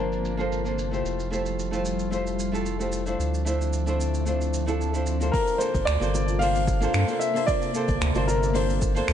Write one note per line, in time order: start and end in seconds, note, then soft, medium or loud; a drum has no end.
0.00 1.03 G1 medium
0.00 1.01 C3 medium
0.00 3.15 F3 medium
0.00 0.34 A#3 medium
0.00 1.01 A#3 medium
0.00 0.35 D4 medium
0.00 0.35 F4 medium
0.00 0.74 A#4 medium
0.00 0.36 C5 medium
0.00 0.35 A5 medium
0.00 3.15 A5 medium
0.12 shaker soft
0.25 shaker medium
0.37 0.61 A#3 medium
0.37 0.62 D4 medium
0.37 0.62 F4 medium
0.37 0.63 A4 medium
0.37 0.63 C5 loud
0.37 shaker soft
0.52 shaker soft
0.64 0.88 A#3 medium
0.64 0.89 D4 medium
0.64 0.89 F4 medium
0.64 0.89 A4 medium
0.64 0.90 C5 medium
0.64 shaker soft
0.79 shaker medium
0.91 1.28 A3 medium
0.91 1.28 E4 medium
0.91 1.29 F4 medium
0.91 1.29 G4 medium
0.91 1.29 C5 medium
0.91 shaker soft
1.05 3.17 F1 medium
1.05 3.17 G3 medium
1.05 shaker medium
1.20 shaker soft
1.30 1.69 A3 medium
1.30 1.69 E4 medium
1.30 1.69 F4 medium
1.30 1.70 G4 medium
1.30 1.70 C5 medium
1.30 shaker medium
1.46 shaker soft
1.59 shaker medium
1.71 2.08 A3 medium
1.71 2.09 E4 medium
1.71 2.09 F4 medium
1.71 2.09 G4 medium
1.71 2.10 C5 medium
1.71 shaker soft
1.85 shaker medium
1.99 shaker soft
2.10 2.49 A3 medium
2.10 2.49 E4 medium
2.10 2.50 F4 medium
2.10 2.50 G4 medium
2.10 2.50 C5 medium
2.10 shaker medium
2.27 shaker soft
2.39 shaker medium
2.52 2.76 A3 medium
2.52 2.76 E4 medium
2.52 2.77 F4 medium
2.52 2.77 G4 medium
2.52 2.77 A4 loud
2.52 shaker soft
2.66 shaker soft
2.79 3.03 A3 medium
2.79 3.03 E4 medium
2.79 3.03 F4 medium
2.79 3.04 G4 medium
2.79 3.04 C5 medium
2.79 shaker soft
2.92 shaker medium
3.06 3.43 A3 medium
3.06 3.43 D4 medium
3.06 3.43 E4 medium
3.06 3.44 F4 medium
3.06 3.44 C5 medium
3.06 shaker soft
3.19 5.31 D2 medium
3.19 5.32 D3 medium
3.19 5.32 F3 medium
3.19 5.32 C4 medium
3.19 5.32 E5 medium
3.19 shaker medium
3.34 shaker soft
3.45 3.83 A3 medium
3.45 3.83 D4 medium
3.45 3.84 E4 medium
3.45 3.84 F4 medium
3.45 3.84 C5 medium
3.45 shaker medium
3.62 shaker soft
3.73 shaker medium
3.86 4.23 A3 medium
3.86 4.23 D4 medium
3.86 4.24 E4 medium
3.86 4.24 F4 medium
3.86 4.24 C5 medium
3.86 shaker soft
4.01 shaker medium
4.14 shaker medium
4.25 4.63 A3 medium
4.25 4.64 D4 medium
4.25 4.64 E4 medium
4.25 4.65 F4 medium
4.25 4.65 C5 medium
4.25 shaker medium
4.41 shaker soft
4.54 shaker medium
4.66 4.90 A3 medium
4.66 4.91 D4 medium
4.66 4.91 E4 medium
4.66 4.91 F4 medium
4.66 4.92 A4 loud
4.66 shaker soft
4.81 shaker soft
4.93 5.17 A3 medium
4.93 5.17 D4 medium
4.93 5.18 E4 medium
4.93 5.18 F4 medium
4.93 5.18 C5 medium
4.93 shaker soft
5.06 shaker medium
5.20 5.57 A#3 medium
5.20 5.57 D4 medium
5.20 5.57 F4 medium
5.20 5.58 A4 medium
5.20 5.58 C5 medium
5.20 shaker soft
5.32 9.13 C3 medium
5.32 9.13 A#3 medium
5.32 7.46 F4 medium
5.32 9.13 A4 medium
5.32 5.60 A#4 medium
5.32 kick loud
5.32 open hi-hat medium
5.32 shaker medium
5.47 open hi-hat soft
5.47 shaker soft
5.58 5.97 A#3 medium
5.58 5.98 D4 medium
5.58 5.98 F4 medium
5.58 5.98 A4 medium
5.58 5.84 C5 medium
5.58 5.99 C5 medium
5.58 shaker medium
5.75 5.84 G1 loud
5.75 kick medium
5.75 open hi-hat soft
5.75 shaker soft
5.85 5.98 D2 loud
5.85 6.41 D5 loud
5.85 finger snap loud
5.85 open hi-hat medium
5.85 shaker medium
6.00 6.89 G1 medium
6.00 6.37 A#3 medium
6.00 6.37 D4 medium
6.00 6.38 F4 medium
6.00 6.38 A4 medium
6.00 6.38 C5 loud
6.00 open hi-hat soft
6.00 high bongo medium
6.00 shaker soft
6.15 high bongo medium
6.15 shaker medium
6.28 shaker soft
6.39 6.78 A#3 medium
6.39 6.78 D4 medium
6.39 6.78 F4 medium
6.39 6.79 A4 medium
6.39 6.79 C5 loud
6.39 7.16 F5 loud
6.39 open hi-hat medium
6.39 shaker medium
6.55 open hi-hat medium
6.55 shaker soft
6.67 kick loud
6.67 high bongo soft
6.67 shaker medium
6.80 7.05 A#3 medium
6.80 7.05 D4 medium
6.80 7.05 F4 medium
6.80 7.06 A4 medium
6.80 7.06 C5 loud
6.80 shaker soft
6.94 7.05 G2 loud
6.94 finger snap loud
6.94 open hi-hat medium
6.94 shaker medium
7.07 7.31 A#3 medium
7.07 7.32 D4 medium
7.07 7.32 F4 medium
7.07 7.32 A4 medium
7.07 7.33 C5 medium
7.07 open hi-hat soft
7.07 shaker soft
7.19 7.45 E5 medium
7.19 shaker loud
7.33 7.71 A#3 medium
7.33 7.71 D4 medium
7.33 7.72 F4 medium
7.33 7.72 A4 medium
7.33 7.72 C5 medium
7.33 open hi-hat medium
7.33 shaker medium
7.47 8.30 D5 loud
7.47 9.13 E5 medium
7.47 kick loud
7.47 open hi-hat medium
7.47 shaker medium
7.62 open hi-hat soft
7.62 shaker soft
7.73 8.12 A#3 medium
7.73 8.12 D4 medium
7.73 8.12 F4 medium
7.73 8.13 A4 medium
7.73 8.13 C5 medium
7.73 shaker medium
7.88 7.98 G1 loud
7.88 kick loud
7.88 open hi-hat soft
7.88 shaker soft
8.01 8.12 D2 medium
8.01 finger snap loud
8.01 open hi-hat medium
8.01 shaker medium
8.14 9.03 G1 medium
8.14 8.51 A#3 medium
8.14 8.52 D4 medium
8.14 8.52 F4 medium
8.14 8.52 A4 medium
8.14 8.53 C5 loud
8.14 open hi-hat soft
8.14 high bongo medium
8.14 shaker soft
8.27 8.53 A#4 medium
8.27 high bongo medium
8.27 shaker medium
8.43 shaker soft
8.53 8.92 A#3 medium
8.53 8.92 D4 medium
8.53 8.93 F4 medium
8.53 8.93 A4 medium
8.53 9.13 C5 medium
8.53 8.93 C5 loud
8.53 open hi-hat medium
8.53 shaker medium
8.70 open hi-hat medium
8.70 shaker soft
8.82 kick loud
8.82 shaker loud
8.94 9.13 A#3 loud
8.94 9.13 D4 loud
8.94 9.13 F4 medium
8.94 9.13 A4 medium
8.94 9.13 C5 loud
8.94 open hi-hat medium
8.94 shaker medium
9.08 9.13 D2 loud
9.08 finger snap medium
9.08 open hi-hat medium
9.08 shaker medium